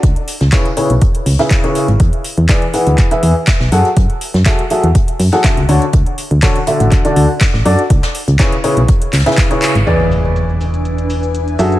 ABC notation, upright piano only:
X:1
M:4/4
L:1/16
Q:"Swing 16ths" 1/4=122
K:Emix
V:1 name="Upright piano"
z4 [C,EGBc] z [C,EGBc] z4 [C,EGBe]2 [C,EGBc]2 z | z4 [E,EGBd] z [E,EGBf]3 [E,EGBe]2 z3 [F,FGAf] z | z4 [F,FGAe] z [F,FGAe] z4 [F,FGAf] [D,e] z [D,DFAc] z | z4 [D,DFAc] z [D,DFAe]3 [D,DFAd]2 z3 [DFAd] z |
z4 [C,EGBc] z [C,EGBc] z4 [C,EGBe]2 [C,EGBc]2 z | [E,EGBd]12- [E,EGBd]2 [F,FGAe]2 |]